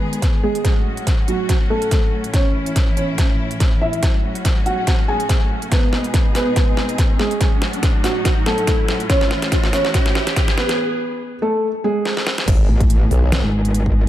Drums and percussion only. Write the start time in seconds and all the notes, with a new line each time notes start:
0.13 closed hi-hat
0.22 kick, snare, closed hi-hat
0.55 closed hi-hat
0.65 kick, snare, closed hi-hat
0.97 closed hi-hat
1.07 kick, snare, closed hi-hat
1.28 closed hi-hat
1.49 kick, snare, closed hi-hat
1.82 closed hi-hat
1.91 kick, snare, closed hi-hat
2.24 closed hi-hat
2.34 kick, snare, closed hi-hat
2.66 closed hi-hat
2.76 kick, snare, closed hi-hat
2.97 closed hi-hat
3.18 kick, snare, closed hi-hat
3.51 closed hi-hat
3.60 kick, snare, closed hi-hat
3.93 closed hi-hat
4.03 kick, snare, closed hi-hat
4.35 closed hi-hat
4.45 kick, snare, closed hi-hat
4.66 closed hi-hat
4.87 kick, snare, closed hi-hat
5.20 closed hi-hat
5.29 kick, snare, closed hi-hat
5.62 closed hi-hat
5.72 kick, snare, closed hi-hat
5.93 snare
6.04 closed hi-hat
6.14 kick, snare, closed hi-hat
6.35 snare, open hi-hat
6.56 kick, snare, closed hi-hat
6.77 snare
6.89 closed hi-hat
6.98 kick, snare, closed hi-hat
7.20 snare
7.31 closed hi-hat
7.41 kick, snare, closed hi-hat
7.62 snare
7.73 closed hi-hat
7.83 kick, snare, closed hi-hat
8.04 snare, open hi-hat
8.25 kick, snare, closed hi-hat
8.46 snare
8.58 closed hi-hat
8.67 kick, snare, closed hi-hat
8.88 snare
9.00 closed hi-hat
9.10 kick, snare, closed hi-hat
9.21 snare
9.31 snare
9.42 snare, closed hi-hat
9.52 kick, snare, closed hi-hat
9.64 snare
9.73 snare, open hi-hat
9.85 snare
9.94 kick, snare, closed hi-hat
10.06 snare
10.15 snare
10.27 snare, closed hi-hat
10.36 kick, snare, closed hi-hat
10.48 snare
10.58 snare
10.69 snare, closed hi-hat
12.05 snare
12.17 snare
12.27 snare
12.38 snare
12.48 kick, closed hi-hat, crash
12.80 kick, closed hi-hat
12.90 closed hi-hat
13.11 open hi-hat
13.32 snare, closed hi-hat
13.65 closed hi-hat
13.75 closed hi-hat
13.86 kick